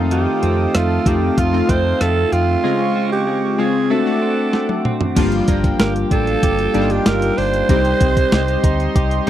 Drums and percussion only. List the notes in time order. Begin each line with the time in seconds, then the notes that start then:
0.11 closed hi-hat
0.43 closed hi-hat
0.75 cross-stick, closed hi-hat
1.06 kick, closed hi-hat
1.38 kick, closed hi-hat
1.69 kick, closed hi-hat
2.01 cross-stick, closed hi-hat
2.33 closed hi-hat
4.53 snare
4.69 high tom
4.85 mid tom
5.01 floor tom
5.16 kick, closed hi-hat, crash
5.32 closed hi-hat
5.48 kick, closed hi-hat
5.64 kick, closed hi-hat
5.80 snare, closed hi-hat
5.96 closed hi-hat
6.11 kick, closed hi-hat
6.27 closed hi-hat
6.43 kick, closed hi-hat
6.59 closed hi-hat
6.74 closed hi-hat
6.90 closed hi-hat
7.06 snare, closed hi-hat
7.22 closed hi-hat
7.38 open hi-hat
7.54 closed hi-hat
7.69 kick, closed hi-hat
7.85 closed hi-hat
8.00 kick, closed hi-hat
8.17 kick, closed hi-hat
8.32 snare, closed hi-hat
8.48 closed hi-hat
8.64 kick, closed hi-hat
8.80 closed hi-hat
8.96 kick, closed hi-hat
9.11 closed hi-hat